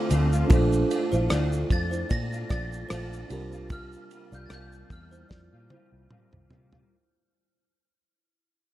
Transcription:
Already playing: A3 C4 F4
0.10 D2 D3 A3 C4 F4, ride, shaker
0.33 A3 C4 F4, shaker
0.48 A#1 A#2 A3 D4 F4 A4, kick, ride, shaker
0.52 D4 F4 C5
0.73 shaker
0.91 A#2 A3 D4 F4, ride, shaker
1.12 A#1 A3 D4 E4 F4 C5, shaker
1.30 D2 A#2 A3 D4 F4 D5, cross-stick, ride, shaker
1.53 shaker
1.70 F2 A#2 A3 D4 F4 A6, kick, ride, shaker
1.91 E4 C5, shaker
2.09 A#2 F4 D5 A#6, kick, ride, shaker
2.33 A3 D4 F4, shaker
2.49 A#1 A#2 A3 D4 F4 D5 A6, kick, cross-stick, ride, shaker
2.54 F4
2.73 shaker
2.89 A#1 A#2 A3 D4 F4 C5, cross-stick, ride, shaker
3.13 shaker
3.28 C2 C3 G3 A#3 D4 F4 G4, ride, shaker
3.32 F4 A#4
3.52 G3 A#3 F4, shaker
3.70 C3 G3 A#3 F4 A#4 F6, kick, ride, shaker
3.93 shaker
4.11 C3 G3 A#3 F4, ride, shaker
4.32 C2 G3 A#3 F4 D5 G6, shaker
4.46 F5 A6
4.50 C2 C3 G3 A#3 F4 A#4 G6, cross-stick, ride, shaker
4.72 shaker
4.90 E2 C3 G3 A#3 F4 F6, kick, ride, shaker
5.11 E4 C5, shaker
5.29 F2 F4 D5, kick, snare
5.53 A#2 G3 A#3 F4
5.70 C3 G3 A#3 E4 F4 C5, high tom
5.92 C2
6.10 C3 G3 A#3 F4, muted fingered electric bass stroke, mid tom
6.32 C2, mid tom
6.50 C3 G3 A#3 F4, floor tom
6.73 G3 A#3 F4, floor tom

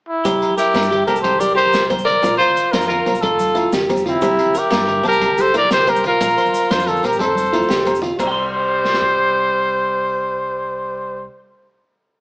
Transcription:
0.08 E4
0.25 C2 C4 G4, kick, closed hi-hat, muted conga, high conga, low agogo, maracas
0.42 closed hi-hat, low agogo
0.50 high conga
0.57 E4 G4 A#4, closed hi-hat, maracas
0.74 G2 D4, snare, closed hi-hat, muted conga, low agogo, maracas
0.83 high conga, maracas
0.91 G4, closed hi-hat, low conga
1.06 C2 C4 G4 A4 A#4, closed hi-hat, high conga, low conga, low agogo
1.16 maracas
1.22 C2 G4 C5, kick, closed hi-hat, muted conga, low agogo
1.34 low conga
1.39 G4 A#4 D5, closed hi-hat, high conga, low conga, maracas
1.49 low conga
1.55 G4 A#4 C5, closed hi-hat, low agogo, maracas
1.66 high conga
1.73 C2, snare, closed hi-hat, muted conga, low conga, maracas
1.90 C4 C5, kick, closed hi-hat, high conga, low agogo, maracas
1.99 maracas
2.05 A#4 D5, closed hi-hat, low conga
2.22 A#1 C4 F4, kick, closed hi-hat, muted conga, high conga, low agogo, maracas
2.37 F4 C5, closed hi-hat, low agogo
2.49 low conga
2.56 closed hi-hat, maracas
2.71 F2 D4 F4 A#4 C5, snare, closed hi-hat, muted conga, low agogo, maracas
2.81 high conga, maracas
2.87 F4 A#4, closed hi-hat, low conga
3.06 C2 C4, closed hi-hat, high conga, low conga, low agogo
3.15 maracas
3.21 F1 F4 A4, kick, closed hi-hat, muted conga, low agogo
3.31 low conga
3.39 closed hi-hat, high conga, maracas
3.48 low conga
3.55 E4 F4, closed hi-hat, low agogo, maracas
3.64 high conga
3.72 F1 G4, snare, closed hi-hat, muted conga, low conga, maracas
3.89 C4, kick, snare, closed hi-hat, high conga, low agogo, maracas
3.97 maracas
4.06 C4 E4 F4, closed hi-hat, low conga
4.21 C2 C4 G4, kick, closed hi-hat, muted conga, high conga, low agogo, maracas
4.39 closed hi-hat, low agogo
4.46 high conga, low conga
4.55 E4 G4 A#4, closed hi-hat, maracas
4.71 G2 A#3, snare, closed hi-hat, muted conga, low agogo, maracas
4.80 high conga
4.88 A#4, closed hi-hat, low conga
5.03 C2 C4 A5, closed hi-hat, high conga, low conga, low agogo
5.08 G4 A#4
5.12 maracas
5.21 C2, kick, closed hi-hat, muted conga, low agogo
5.30 low conga
5.38 G4 A4 C5, closed hi-hat, high conga, low conga, maracas
5.46 low conga
5.54 E4 A#4 D5, closed hi-hat, low agogo, maracas
5.63 high conga
5.71 C2 G4 C5, snare, closed hi-hat, muted conga, low conga, maracas
5.87 C4 G4 A#4 C5, kick, closed hi-hat, high conga, low agogo, maracas
5.96 maracas
6.04 F4 A#4, closed hi-hat, low conga
6.20 A#1 A#4, muted steel-string acoustic guitar stroke, kick, closed hi-hat, muted conga, high conga, low conga, low agogo, maracas
6.30 low conga
6.38 C5, closed hi-hat, low agogo, maracas
6.46 high conga, low conga, maracas
6.54 closed hi-hat, maracas
6.63 low conga
6.71 F2 D4 F4 C5, snare, closed hi-hat, muted conga, low agogo, maracas
6.79 high conga, maracas
6.87 F4 A4 A#4, closed hi-hat, low conga
6.96 maracas
7.03 A#1 C4 G4 A#4, closed hi-hat, high conga, low agogo, maracas
7.11 low conga, maracas
7.19 F1 A4 C5, kick, closed hi-hat, muted conga, low conga, low agogo
7.27 low conga
7.35 closed hi-hat, high conga, maracas
7.44 low conga, maracas
7.53 E4 F4, closed hi-hat, low agogo
7.60 high conga, maracas
7.69 F1 G4, snare, closed hi-hat, muted conga, low conga, maracas
7.86 C4, closed hi-hat, high conga, low conga, low agogo, maracas
7.93 low conga, maracas
8.02 F4, closed hi-hat, low conga
8.10 low conga
8.18 C2 G3 C4 C5, kick, crash, muted conga, low agogo, maracas
8.24 G5, muted clean electric guitar stroke
8.32 C6
8.85 snare
8.94 snare
9.02 kick

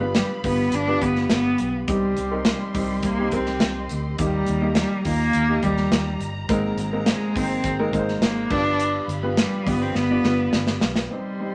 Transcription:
Already playing: G1 G2 G4 F5 B5
0.00 G3 B3 D4 F4 B4
0.15 G3, snare, hi-hat pedal, open hi-hat
0.43 G1 G3 B3 D4 F4 B4, kick, hi-hat pedal, open hi-hat
0.72 G1 D4, hi-hat pedal, open hi-hat
0.87 G3 B3 D4 F4 B4
1.01 G1 G3 B3 D4 F4 G4, kick, hi-hat pedal, open hi-hat
1.16 snare
1.30 G1 B3, snare, hi-hat pedal, open hi-hat
1.58 B1, hi-hat pedal, open hi-hat
1.88 C2 C3 G3 C4 D#4 G4 D#5 C6, kick, hi-hat pedal, open hi-hat
2.17 C2, hi-hat pedal, open hi-hat
2.31 C4 D#4 A#4
2.45 G3, snare, hi-hat pedal, open hi-hat
2.74 C2 C4 D#4 G4, kick, hi-hat pedal, open hi-hat
3.03 C2 A#3, kick, hi-hat pedal, open hi-hat
3.19 C4 D#4 G4
3.31 C2 C4 D#4 A#4, kick, hi-hat pedal, open hi-hat
3.46 snare
3.60 C2, snare, hi-hat pedal, open hi-hat
3.89 D2, hi-hat pedal, open hi-hat
4.18 D#2 D#3 G3 A#3 D#4 G4 A#5, kick, hi-hat pedal, open hi-hat
4.46 D#2, hi-hat pedal, open hi-hat
4.61 A#3 D#4 G4
4.75 G3, snare, hi-hat pedal, open hi-hat
5.04 D#2 A#3 D#4 F4, kick, hi-hat pedal, open hi-hat
5.33 D#2, hi-hat pedal, open hi-hat
5.49 A#3 D#4 G4
5.63 D#2 G3 A#3 D#4 G4, kick, hi-hat pedal, open hi-hat
5.77 snare
5.91 D#2, snare, hi-hat pedal, open hi-hat
6.20 G1, hi-hat pedal, open hi-hat
6.49 G#1 G#2 G#3 A#3 C4 D#4 G#4 A#4 C5, kick, hi-hat pedal, open hi-hat
6.77 G#1, hi-hat pedal, open hi-hat
6.93 G#3 A#3 C4 D#4 A#4
7.06 G#3, snare, hi-hat pedal, open hi-hat
7.36 G#1 G#3 A#3 C4 D#4 C5, kick, hi-hat pedal, open hi-hat
7.64 G#1, kick, hi-hat pedal, open hi-hat
7.79 G#3 A#3 C4 D#4 A#4
7.93 G#1 G#3 A#3 C4 D#4 A#4, kick, hi-hat pedal, open hi-hat
7.99 C5
8.08 snare
8.22 G#1 A#3, snare, hi-hat pedal, open hi-hat
8.50 G1 G2 G3 B3 D4 F4 G4 B4 F5 B5, kick, crash
8.80 hi-hat pedal, open hi-hat
9.08 G1, hi-hat pedal, open hi-hat
9.23 G3 B3 D4 F4 B4
9.37 G3, snare, hi-hat pedal, open hi-hat
9.66 G1 G3 B3 D4 F4 D5, kick, hi-hat pedal, open hi-hat
9.82 C4
9.95 G1 B3, snare
10.10 G3 B3 D4 F4 D5
10.24 G1 G3 B3 D4 F4 B4, snare
10.53 G1, snare
10.67 snare
10.81 B1, snare
10.96 snare
11.10 C3 G3 C4 D#4 G4 C5 D#5 C6
11.40 G3 C4 D#4 C5

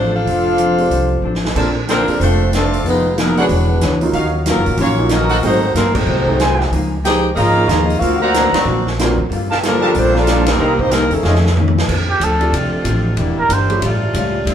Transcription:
Already playing: A1 F3 A3 C4 D4 F4 A4 C5
0.11 C4 D4 F4 A4 C5 F5
0.25 F1 F3 C4 D4 A4, open hi-hat
0.58 F3 C4 D4 A4, closed hi-hat
0.78 A3 C4 D4 G4, open hi-hat
0.90 C2 F3 C4 D4 A4, open hi-hat
1.22 A1 F3 C4 D4 A4
1.35 snare
1.45 snare
1.55 A#1 A#3 C4 D4 F4 A4 A#4 C5 A5, kick, crash
1.88 D3 F3 A#3 C4 D4 A4 A#4 C5 G5, snare, closed hi-hat
2.07 A#3 C4 D4 F4 A4, muted upright bass stroke, open hi-hat
2.19 F1 F3 A3 A#3 C4 D4 F4 A4 C5, open hi-hat
2.52 F3 A3 A#3 C4 D4 F4 A4 C5 D5, snare, closed hi-hat
2.74 open hi-hat
2.85 F1 D#3 F3 G#3 B3 D#4 F4 G#4 B4, open hi-hat
3.17 F3 F#3 A#3 B3 D#4 G#4 A#4, snare, closed hi-hat
3.37 D3 G#3 B3 C#4 D4 F#4 G#4 C#5 F#5, open hi-hat
3.41 B4
3.49 E1 E3 D4 G#4 C#5, open hi-hat
3.80 C#2 E3 D4 G#4 C#5, snare, closed hi-hat
4.01 F#3 A#3 C#4 D#4 F4, open hi-hat
4.13 D#2 D#3 F#3 C#4 D#4 F4 F#4 C#5 F5, open hi-hat
4.46 C#3 D#3 F#3 A#3 C#4 F4, snare, closed hi-hat
4.50 F#3 F4 A#4
4.56 F#2
4.66 A#2, open hi-hat
4.77 A#1 D#3 F#3 A#3 C#4 F4 F#4, open hi-hat
4.82 C#5
4.98 F#3 A#3 C#4 D#4 F4
5.09 D#3 F#3 A#3 C#4 D#4 F4 A#4 D#5, snare, closed hi-hat
5.13 F#4
5.29 F#4 A4 C5 F#5, open hi-hat
5.42 G#1 G#2 D#3 F#3 A3 C4 D#4 F#4 G#4 C5, open hi-hat
5.74 G1 G#2 F#3 A3 A#3 C4 D#4 A#4, snare, closed hi-hat
5.94 D#3 F#3 A3 C4 D#4 F#4 C5, kick, crash
6.06 C2 G#2 F#3 A3 C4
6.27 F#3 A3 C4 D#4 G#4, kick
6.40 G#2 F#3 A3 C4 F#4 A4 C5 G#5, snare, closed hi-hat
6.60 snare
6.71 C#2 C#3 F3 A#3 D#4, open hi-hat
7.03 C#3 F3 A#3 D#4 G4 G#4 C5 G5, snare, closed hi-hat
7.32 G#3 D#4 G#4 A#4 D#5 F5
7.36 G#1 C#3 F3 A#3 D#4 F4 C#5 D#5 A#5, open hi-hat
7.56 F3 A#3 C#4 D#4 G#4
7.67 D#2 C#3 F3 G#3 A#3 D#4 F4 G#4 D#5, snare, closed hi-hat
7.90 open hi-hat
7.98 D2 A#3 C4 F4 F#4 A#4 F5
8.02 D3 A#3 C4 F#4, open hi-hat
8.16 A#3 C4 F#4
8.20 C4 F#4 A#4 C5 D5 F5 F#5 A#5
8.34 D3 A#3 C4 F#4, snare, closed hi-hat
8.51 D#2 F#3 A#3 C4 D4 F#4 A#4 D5, snare, ride
8.65 A#1 D3 A#3 C4
8.69 F#4
8.87 snare
8.98 D3 F#3 A#3 C4 D4 F4 F#4 A#4, snare, closed hi-hat
9.18 D2
9.30 G1 G3 A#3 F4 A4, open hi-hat
9.50 G4 A#4 F5 A5, snare
9.63 D3 F3 G3 A#3 F4 A4, snare, closed hi-hat
9.67 F3 D4 A4 A#4
9.81 G3 A#3 D4 F4 G4 A4 A#4 F5 A5
9.95 A#1 G3 A3 A#3 C4 D4 F4 A4 C5, open hi-hat
10.15 F3 A#3 D4 F4 A4 D5, snare
10.27 G3 A#3 F4 A4, snare, closed hi-hat
10.46 D#3 G3 A#3 D#4 A#4, snare, ride
10.51 G3 C4
10.59 C2 C3 G3 A#3 G4 C5 D#5 A#5
10.63 D#4
10.79 D#3 G3 A#3 C4 D#4 G4 C5, kick
10.91 C3 D#3 G3 A#3 C4 D#4 A#4, snare, closed hi-hat
11.11 E2 C#3 D#3 A3 C#4 G#4 A4, open hi-hat
11.23 F2 D#3 A3 F4 C#5 D#5 F5, snare
11.28 C#4
11.35 snare
11.46 snare
11.57 F2 D#3 A3 C#4, high tom
11.68 high tom
11.78 snare
11.89 F2 D3 F3 A3 C4 D4 F4 A4, kick, crash
12.10 G4
12.20 D2 F3 C4 D4 A4, hi-hat pedal, ride
12.40 A3 C4 D4 F4 G4, ride
12.52 C2 F3 C4 D4, ride
12.56 A4
12.73 muted upright bass stroke
12.84 A1 F3 C4 D4 A4, hi-hat pedal, ride
13.17 E1 E3 G3 A#3 D4 E4 G4, ride
13.37 A#4, muted upright bass stroke
13.48 G1 E3 A#3 D4 G4, hi-hat pedal, ride
13.53 C5
13.69 F3 A3 C#4 E4 G4, ride
13.81 A1 A2 C#3 G3 A3 C#4 F4, ride
14.14 C#2 A2 G3 C#4 F4, hi-hat pedal, ride
14.45 D2 C3 D3 G3 C4 E4 F4, ride

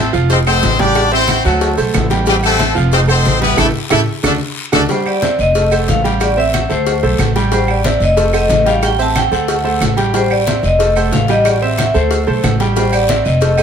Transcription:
Already playing: A3 C4 A4 C5 E5
0.13 F1 F3 F4 F5, short guiro, maracas
0.30 C4 D#4 C5, cowbell, high conga, low agogo, long guiro, maracas
0.46 A3 C4 D#4 A4 C5, high conga, low agogo, claves, maracas
0.63 A1, cowbell, high conga, low timbale, short guiro, maracas
0.79 G3 D4 G4 D5 G5, cowbell, high conga, low agogo, short guiro, maracas
0.95 cowbell, high conga, low agogo, long guiro, claves, maracas
1.11 C4 E4 C5 E5, high conga
1.28 cowbell, high conga, low timbale, low agogo, short guiro, claves, maracas
1.44 D2 F#3 A3 C4 F#4 A4 F#5, high conga, short guiro, maracas
1.61 cowbell, high conga, low agogo, long guiro, maracas
1.77 B1 A3 A4 C5, high conga, low agogo, maracas
1.94 A1, cowbell, high conga, low timbale, low agogo, short guiro, claves, maracas
2.10 G3 G4 G5, cowbell, high conga, short guiro, maracas
2.26 G3 C4 G4 G5, cowbell, high conga, low agogo, long guiro, maracas
2.43 A3 C4 A4, high conga, low agogo, claves, maracas
2.59 C4 C5 E5, cowbell, high conga, low timbale, short guiro, maracas
2.75 F1 F3 F4 F5, short guiro, maracas
2.92 C4 D#4 C5, cowbell, high conga, low agogo, long guiro, maracas
3.08 A3 C4 D#4 A4 C5, high conga, low agogo, claves, maracas
3.25 A1, cowbell, high conga, low timbale, short guiro, maracas
3.41 G3 B3 E4 G4 B4 G5, cowbell, high conga, low agogo, short guiro, maracas
3.57 A1 A3 E4 G4 A4, cowbell, high conga, high timbale, long guiro, claves, maracas
3.90 A1 A3 E4 G4 A4, cowbell, high conga, high timbale, long guiro, claves, maracas
4.23 D2 A3 D4 F#4 A4, cowbell, high conga, high timbale, long guiro, claves, maracas
4.72 D2 A3 D4 F#4 A4, cowbell, high conga, high timbale, long guiro, claves, maracas
4.89 G3 G4 C5 G5, cowbell, high conga, low agogo, long guiro, maracas
5.06 D5, high conga, low agogo, claves
5.22 C4 C5 E5, cowbell, high conga, low timbale, short guiro, maracas
5.39 F1 D#5, short guiro, maracas
5.55 A3 A4 C5, cowbell, high conga, low agogo, long guiro, maracas
5.71 A3 A4 C5, high conga, low agogo, claves, maracas
5.88 A1 F5, cowbell, high conga, low timbale, short guiro, maracas
6.04 G3 G4 G5, cowbell, low agogo, short guiro, maracas
6.21 D5, cowbell, high conga, low agogo, long guiro, claves, maracas
6.37 C4 C5 E5, high conga
6.54 cowbell, high conga, low timbale, low agogo, short guiro, claves, maracas
6.69 D2 A3 A4 C5, high conga, short guiro, maracas
6.87 cowbell, high conga, low agogo, long guiro, maracas
7.03 B1 A3 A4 C5, high conga, low agogo
7.19 A1, cowbell, high conga, low timbale, low agogo, short guiro, claves, maracas
7.36 G3 G4 G5, cowbell, high conga, short guiro, maracas
7.52 G3 G4 C5 G5, cowbell, high conga, low agogo, long guiro, maracas
7.68 D5, high conga, low agogo, claves
7.84 C4 C5 E5, cowbell, high conga, low timbale, short guiro, maracas
8.00 F1 D#5, short guiro, maracas
8.17 A3 A4 C5, cowbell, high conga, low agogo, long guiro, maracas
8.33 A3 A4 C5 D#5, high conga, low agogo, claves, maracas
8.49 A1, cowbell, high conga, low timbale, short guiro, maracas
8.65 G3 G4 F5 G5, cowbell, low agogo, short guiro, maracas
8.82 G5, cowbell, high conga, low agogo, long guiro, claves, maracas
8.99 C4 C5 E5 A5, high conga, maracas
9.15 G5, cowbell, high conga, low timbale, low agogo, short guiro, claves, maracas
9.31 D2 A3 A4 C5 F#5, high conga, short guiro, maracas
9.48 cowbell, high conga, low agogo, long guiro, maracas
9.64 A3 A4 C5, high conga, low agogo
9.81 A1, cowbell, high conga, low timbale, low agogo, short guiro, claves, maracas
9.97 G3 G4 G5, cowbell, high conga, short guiro, maracas
10.14 G3 G4 C5 G5, cowbell, high conga, low agogo, long guiro, maracas
10.31 D5, high conga, low agogo, claves
10.47 C4 C5 E5, cowbell, high conga, low timbale, short guiro, maracas
10.63 F1 D#5, short guiro, maracas
10.79 A3 A4 C5, cowbell, high conga, low agogo, long guiro, maracas
10.96 A3 A4 C5, high conga, low agogo, claves, maracas
11.12 A1 F5, cowbell, high conga, low timbale, short guiro, maracas
11.28 G3 G4 D#5 G5, cowbell, low agogo, short guiro, maracas
11.45 D5, cowbell, high conga, low agogo, long guiro, claves, maracas
11.62 C4 C5 E5, high conga
11.78 cowbell, high conga, low timbale, low agogo, short guiro, claves, maracas
11.94 D2 A3 A4 C5, high conga, short guiro, maracas
12.11 cowbell, high conga, low agogo, long guiro, maracas
12.27 B1 A3 A4 C5, high conga, low agogo
12.44 A1, cowbell, high conga, low timbale, low agogo, short guiro, claves, maracas
12.60 G3 G4 G5, cowbell, high conga, short guiro, maracas
12.76 G3 G4 C5 G5, cowbell, high conga, low agogo, long guiro, maracas
12.92 D5, high conga, low agogo, claves, maracas
13.09 C4 C5 E5, cowbell, high conga, low timbale, short guiro, maracas
13.25 F1 D#5, short guiro, maracas
13.41 A3 A4 C5, cowbell, high conga, low agogo, long guiro, maracas
13.58 A3 A4 C5 D#5, high conga, low agogo, claves, maracas

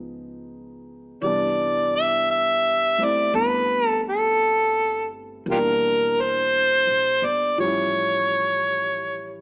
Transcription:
Already playing: C#2 F3 G#3 B3 D#4
1.22 C2 E3 G3 B3 D5
1.27 D4
1.96 E5
2.31 E5
2.98 A3 C4 E4
3.04 D5
3.34 G1 B4
3.89 A4
4.09 A4
5.46 E1 E3 G3 A#3
5.51 D4 F4 G4 A#4
6.21 C5
6.87 A#1
7.22 G1 D5
7.58 A1 F3 G3 C#4 C#5
7.64 E4

